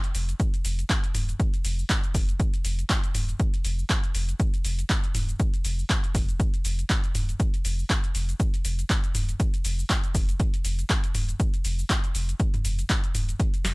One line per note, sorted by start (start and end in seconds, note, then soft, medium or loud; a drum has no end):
0.04 closed hi-hat medium
0.04 cabasa soft
0.15 0.34 F1 loud
0.15 open hi-hat medium
0.15 cabasa medium
0.29 closed hi-hat soft
0.29 cabasa soft
0.40 kick loud
0.40 closed hi-hat medium
0.40 cabasa soft
0.54 closed hi-hat medium
0.54 cabasa soft
0.65 0.84 F1 medium
0.65 open hi-hat loud
0.65 cabasa medium
0.79 closed hi-hat soft
0.79 cabasa soft
0.90 kick loud
0.90 clap loud
0.90 closed hi-hat medium
0.90 cabasa soft
1.04 closed hi-hat medium
1.04 cabasa soft
1.15 1.34 D#1 medium
1.15 mid tom medium
1.15 open hi-hat loud
1.15 cabasa medium
1.29 closed hi-hat soft
1.29 cabasa soft
1.40 kick loud
1.40 closed hi-hat medium
1.40 cabasa soft
1.54 closed hi-hat soft
1.54 cabasa soft
1.65 1.84 F1 loud
1.65 open hi-hat loud
1.65 cabasa medium
1.79 cabasa soft
1.90 kick loud
1.90 clap loud
1.90 closed hi-hat medium
1.90 cabasa soft
2.04 closed hi-hat medium
2.04 cabasa soft
2.15 2.34 F1 loud
2.15 kick medium
2.15 open hi-hat loud
2.15 cabasa medium
2.29 closed hi-hat soft
2.29 cabasa soft
2.40 kick loud
2.40 closed hi-hat medium
2.40 cabasa soft
2.54 closed hi-hat soft
2.54 cabasa soft
2.65 2.84 F1 medium
2.65 open hi-hat loud
2.65 cabasa medium
2.79 closed hi-hat soft
2.79 cabasa soft
2.90 kick loud
2.90 clap loud
2.90 closed hi-hat medium
2.90 cabasa soft
3.04 closed hi-hat soft
3.04 cabasa soft
3.15 3.34 D#1 medium
3.15 mid tom medium
3.15 open hi-hat loud
3.15 cabasa medium
3.29 closed hi-hat soft
3.29 cabasa soft
3.40 kick loud
3.40 closed hi-hat medium
3.40 cabasa soft
3.54 closed hi-hat soft
3.54 cabasa soft
3.65 3.84 F1 loud
3.65 open hi-hat loud
3.65 cabasa medium
3.79 cabasa soft
3.90 kick loud
3.90 clap loud
3.90 closed hi-hat medium
3.90 cabasa soft
4.04 closed hi-hat soft
4.04 cabasa soft
4.15 4.34 F1 loud
4.15 open hi-hat loud
4.15 cabasa medium
4.29 closed hi-hat soft
4.29 cabasa soft
4.40 kick loud
4.40 closed hi-hat medium
4.40 cabasa soft
4.54 closed hi-hat soft
4.54 cabasa soft
4.65 4.84 F1 loud
4.65 open hi-hat loud
4.65 cabasa medium
4.79 closed hi-hat soft
4.79 cabasa soft
4.90 kick loud
4.90 clap loud
4.90 closed hi-hat medium
4.90 cabasa soft
5.04 closed hi-hat soft
5.04 cabasa soft
5.15 5.34 D#1 medium
5.15 mid tom medium
5.15 open hi-hat loud
5.15 cabasa medium
5.29 closed hi-hat soft
5.29 cabasa soft
5.40 kick loud
5.40 closed hi-hat medium
5.40 cabasa soft
5.54 closed hi-hat soft
5.54 cabasa soft
5.65 5.84 F1 medium
5.65 open hi-hat loud
5.65 cabasa medium
5.79 cabasa soft
5.90 kick loud
5.90 clap loud
5.90 closed hi-hat medium
5.90 cabasa soft
6.04 closed hi-hat soft
6.04 cabasa soft
6.15 6.34 F1 loud
6.15 kick medium
6.15 open hi-hat loud
6.15 cabasa medium
6.29 closed hi-hat soft
6.29 cabasa soft
6.40 kick loud
6.40 closed hi-hat medium
6.40 cabasa soft
6.54 closed hi-hat soft
6.54 cabasa soft
6.65 6.84 F1 medium
6.65 open hi-hat loud
6.65 cabasa medium
6.79 closed hi-hat soft
6.79 cabasa soft
6.90 kick loud
6.90 clap loud
6.90 closed hi-hat medium
6.90 cabasa soft
7.04 closed hi-hat medium
7.04 cabasa soft
7.15 7.34 D#1 medium
7.15 mid tom medium
7.15 open hi-hat loud
7.15 cabasa medium
7.29 closed hi-hat soft
7.29 cabasa soft
7.40 kick loud
7.40 closed hi-hat medium
7.40 cabasa soft
7.54 closed hi-hat soft
7.54 cabasa soft
7.65 7.84 F1 medium
7.65 open hi-hat loud
7.65 cabasa medium
7.79 cabasa soft
7.90 kick loud
7.90 clap loud
7.90 closed hi-hat medium
7.90 cabasa soft
8.04 closed hi-hat soft
8.04 cabasa soft
8.15 8.34 F1 loud
8.15 open hi-hat medium
8.15 cabasa medium
8.29 closed hi-hat soft
8.29 cabasa soft
8.40 kick loud
8.40 closed hi-hat medium
8.40 cabasa soft
8.54 closed hi-hat medium
8.54 cabasa soft
8.65 8.84 F1 medium
8.65 open hi-hat loud
8.65 cabasa medium
8.79 closed hi-hat soft
8.79 cabasa soft
8.90 kick loud
8.90 clap loud
8.90 closed hi-hat medium
8.90 cabasa soft
9.04 closed hi-hat medium
9.04 cabasa soft
9.15 9.34 D#1 medium
9.15 mid tom medium
9.15 open hi-hat loud
9.15 cabasa medium
9.29 closed hi-hat soft
9.29 cabasa soft
9.40 kick loud
9.40 closed hi-hat medium
9.40 cabasa soft
9.54 closed hi-hat soft
9.54 cabasa soft
9.65 9.84 F1 loud
9.65 open hi-hat loud
9.65 cabasa medium
9.79 cabasa soft
9.90 kick loud
9.90 clap loud
9.90 closed hi-hat medium
9.90 cabasa soft
10.04 closed hi-hat soft
10.04 cabasa soft
10.15 10.34 F1 loud
10.15 kick medium
10.15 open hi-hat medium
10.15 cabasa medium
10.29 closed hi-hat soft
10.29 cabasa soft
10.40 kick loud
10.40 closed hi-hat medium
10.40 cabasa soft
10.54 closed hi-hat medium
10.54 cabasa soft
10.65 10.84 F1 medium
10.65 open hi-hat loud
10.65 cabasa medium
10.79 closed hi-hat soft
10.79 cabasa soft
10.90 kick loud
10.90 clap loud
10.90 closed hi-hat medium
10.90 cabasa soft
11.04 closed hi-hat medium
11.04 cabasa soft
11.15 11.34 D#1 medium
11.15 mid tom medium
11.15 open hi-hat loud
11.15 cabasa medium
11.29 closed hi-hat soft
11.29 cabasa soft
11.40 kick loud
11.40 closed hi-hat medium
11.40 cabasa soft
11.54 closed hi-hat medium
11.54 cabasa soft
11.65 11.84 F1 loud
11.65 open hi-hat medium
11.65 cabasa medium
11.79 cabasa soft
11.90 kick loud
11.90 clap loud
11.90 closed hi-hat medium
11.90 cabasa soft
12.04 closed hi-hat medium
12.04 cabasa soft
12.15 12.34 F1 loud
12.15 open hi-hat medium
12.15 cabasa medium
12.29 closed hi-hat soft
12.29 cabasa soft
12.40 kick loud
12.40 closed hi-hat medium
12.40 cabasa soft
12.54 closed hi-hat medium
12.54 mid tom medium
12.54 cabasa soft
12.65 12.84 F1 loud
12.65 open hi-hat loud
12.65 cabasa medium
12.79 closed hi-hat soft
12.79 cabasa soft
12.90 kick loud
12.90 clap loud
12.90 closed hi-hat medium
12.90 cabasa soft
13.04 closed hi-hat medium
13.04 cabasa soft
13.15 13.34 D#1 medium
13.15 mid tom medium
13.15 open hi-hat loud
13.15 cabasa medium
13.29 closed hi-hat soft
13.29 cabasa soft
13.40 kick loud
13.40 closed hi-hat medium
13.40 cabasa soft
13.54 closed hi-hat medium
13.54 cabasa soft
13.65 13.74 F1 medium
13.65 snare medium
13.65 open hi-hat loud
13.65 cabasa medium